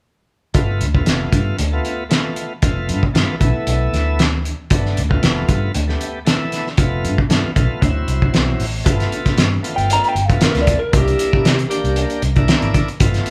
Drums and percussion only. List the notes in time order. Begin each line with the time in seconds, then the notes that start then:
0.54 kick, closed hi-hat
0.81 closed hi-hat
0.95 kick
1.06 snare, closed hi-hat
1.32 kick, closed hi-hat
1.59 closed hi-hat
1.85 closed hi-hat
2.11 snare, closed hi-hat
2.36 closed hi-hat
2.62 kick, closed hi-hat
2.89 closed hi-hat
3.03 kick
3.15 snare, closed hi-hat
3.41 kick, closed hi-hat
3.67 closed hi-hat
3.94 snare, closed hi-hat
4.19 snare, closed hi-hat
4.45 closed hi-hat
4.70 kick, closed hi-hat
4.86 snare
4.97 closed hi-hat
5.11 kick
5.23 snare, closed hi-hat
5.49 kick, closed hi-hat
5.75 closed hi-hat
5.89 snare
6.01 closed hi-hat
6.27 snare, closed hi-hat
6.52 snare, closed hi-hat
6.67 snare
6.77 kick, closed hi-hat
7.05 closed hi-hat
7.18 kick
7.30 snare, closed hi-hat
7.56 kick, closed hi-hat
7.82 kick, closed hi-hat
8.08 closed hi-hat
8.22 kick
8.34 snare, closed hi-hat
8.60 open hi-hat
8.86 kick, closed hi-hat
9.00 snare, closed hi-hat
9.12 closed hi-hat
9.26 kick, snare, closed hi-hat
9.38 snare, closed hi-hat
9.64 closed hi-hat
9.78 closed hi-hat
9.90 closed hi-hat
10.04 closed hi-hat
10.16 closed hi-hat
10.30 kick, closed hi-hat
10.41 snare, closed hi-hat
10.55 snare, closed hi-hat
10.67 kick, closed hi-hat
10.93 kick, closed hi-hat
11.08 closed hi-hat
11.19 closed hi-hat
11.33 kick
11.45 snare, closed hi-hat
11.59 closed hi-hat
11.71 closed hi-hat
11.85 closed hi-hat
11.96 closed hi-hat
12.10 closed hi-hat
12.22 closed hi-hat
12.36 kick, closed hi-hat
12.48 snare, closed hi-hat
12.62 closed hi-hat
12.74 kick, closed hi-hat
12.88 closed hi-hat
13.00 kick, closed hi-hat
13.14 snare, closed hi-hat
13.26 closed hi-hat